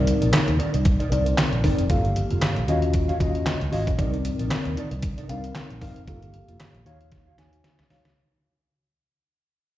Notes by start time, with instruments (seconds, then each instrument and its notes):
Already playing: fingered electric bass C2, tine electric piano C4 D#4 A#4 D5
0.07 muted clean electric guitar stroke, closed hi-hat
0.21 fingered electric bass A#1, clean electric guitar D#4 A#4 D5, closed hi-hat
0.33 muted clean electric guitar stroke, snare, clap, closed hi-hat
0.47 fingered electric bass D#2, muted clean electric guitar stroke, closed hi-hat
0.58 clean electric guitar D#4 A#4 D5, closed hi-hat
0.74 fingered electric bass C2, muted clean electric guitar stroke, closed hi-hat
0.85 muted clean electric guitar stroke, kick, closed hi-hat
1.00 clean electric guitar D#4 A#4 D5, closed hi-hat
1.11 fingered electric bass C2, tine electric piano C4 D#4 A#4 D5, clean electric guitar D#4 A#4 D5, closed hi-hat
1.26 muted clean electric guitar stroke, closed hi-hat
1.38 snare, clap, closed hi-hat
1.52 fingered electric bass A#1, muted clean electric guitar stroke, closed hi-hat
1.63 fingered electric bass G1, tine electric piano C4 D#4 A#4 D5, clean electric guitar D#4 A#4 D5, kick, open hi-hat
1.78 fingered electric bass F1, muted clean electric guitar stroke, closed hi-hat
1.89 fingered electric bass G1, clean electric guitar A#3 F4 A4, tine electric piano A#3 G4 A4 F5, kick, closed hi-hat
2.04 muted clean electric guitar stroke, closed hi-hat
2.15 muted clean electric guitar stroke, closed hi-hat
2.30 fingered electric bass F1, clean electric guitar A#3 F4 A4, closed hi-hat
2.42 muted clean electric guitar stroke, snare, clap, closed hi-hat
2.56 fingered electric bass A#1, muted clean electric guitar stroke, closed hi-hat
2.67 fingered electric bass D#2, tine electric piano C#4 F4 F#4 D#5, clean electric guitar F#4 C#5 F5, closed hi-hat
2.82 muted clean electric guitar stroke, closed hi-hat
2.94 kick, closed hi-hat
3.08 clean electric guitar F#4 C#5 F5, closed hi-hat
3.20 fingered electric bass D#2, tine electric piano C#4 F4 F#4 D#5, clean electric guitar F#4 F5, kick, closed hi-hat
3.35 muted clean electric guitar stroke, closed hi-hat
3.46 muted clean electric guitar stroke, snare, clap, closed hi-hat
3.60 fingered electric bass C#2, muted clean electric guitar stroke, closed hi-hat
3.72 fingered electric bass G#1, tine electric piano C#4 F4 F#4 D#5, clean electric guitar F#4 C#5 F5, open hi-hat
3.87 fingered electric bass A#1, muted clean electric guitar stroke, kick, closed hi-hat
3.98 fingered electric bass C2, tine electric piano C4 D#4 A#4 D5, clean electric guitar D#4 A#4 D5, kick, closed hi-hat
4.13 muted clean electric guitar stroke, closed hi-hat
4.25 muted clean electric guitar stroke, closed hi-hat
4.39 fingered electric bass A#1, clean electric guitar D#4 A#4 D5, closed hi-hat
4.51 muted clean electric guitar stroke, snare, clap, closed hi-hat
4.65 fingered electric bass D#2, muted clean electric guitar stroke, closed hi-hat
4.77 clean electric guitar D#4 A#4 D5, closed hi-hat
4.91 fingered electric bass C2, muted clean electric guitar stroke, closed hi-hat
5.03 muted clean electric guitar stroke, kick, closed hi-hat
5.18 clean electric guitar D#4 A#4 D5, closed hi-hat
5.29 fingered electric bass C2, tine electric piano C4 D4 A#4 F5, clean electric guitar D#4 A#4 D5, closed hi-hat
5.35 tine electric piano D#4
5.43 muted clean electric guitar stroke, closed hi-hat
5.55 snare, clap, closed hi-hat
5.70 fingered electric bass A#1, muted clean electric guitar stroke, closed hi-hat
5.81 fingered electric bass G1, tine electric piano C4 D#4 A#4 F5, clean electric guitar D#4 A#4 D5, kick, open hi-hat
5.96 fingered electric bass F1, muted clean electric guitar stroke, closed hi-hat
6.07 fingered electric bass G1, clean electric guitar A#3 F4 A4, tine electric piano A#3 G4 A4 F5, kick, closed hi-hat
6.22 muted clean electric guitar stroke, closed hi-hat
6.33 muted clean electric guitar stroke, closed hi-hat
6.48 fingered electric bass F1, clean electric guitar A#3 F4 A4, closed hi-hat
6.59 muted clean electric guitar stroke, snare, clap, closed hi-hat
6.74 fingered electric bass A#1, muted clean electric guitar stroke, closed hi-hat
6.86 fingered electric bass D#2, tine electric piano D#4 F#4 C#5 F5, clean electric guitar F#4 C#5 F5, closed hi-hat
7.01 closed hi-hat
7.12 kick, snare, closed hi-hat
7.27 clean electric guitar F#4 C#5 F5
7.38 fingered electric bass D#2, tine electric piano D#4 F#4 C#5 G#5, clean electric guitar F#4 F5, snare, closed hi-hat
7.53 muted clean electric guitar stroke, closed hi-hat
7.64 muted clean electric guitar stroke, snare, closed hi-hat
7.79 fingered electric bass C#2, muted clean electric guitar stroke, snare, closed hi-hat
7.90 fingered electric bass C2, tine electric piano D#4 F#4 C#5 F5, clean electric guitar F#4 C#5 F5, snare, open hi-hat
8.04 fingered electric bass C#2, muted clean electric guitar stroke, snare, closed hi-hat